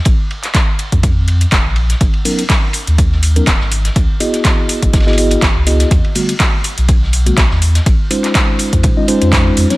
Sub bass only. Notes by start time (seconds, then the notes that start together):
0.06 A#1
0.92 F2
1.52 F1
1.65 A#1
2.01 G#1
2.87 D#2
3.47 D#1
3.61 G#1
3.96 C#2
4.82 G#1
5.42 G#1
5.56 C#2
5.91 E2
6.78 B1
7.37 B1
7.51 E2
7.86 A#1
8.73 F2
8.84 A#2
9.22 F2
9.57 F2